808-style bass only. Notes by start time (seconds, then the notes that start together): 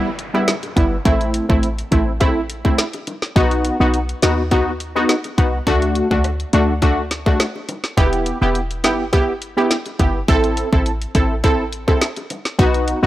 Already playing: G1
0.77 G1
1.05 A1
1.50 A1
1.92 A1
3.36 B1
3.80 B1
4.23 D#2
5.38 C2
5.67 D2
6.11 D2
6.53 D2
7.98 E1
8.42 E1
8.84 G1
10.00 G1
10.28 A1
10.73 A1
11.15 A1
12.59 B1
13.03 B1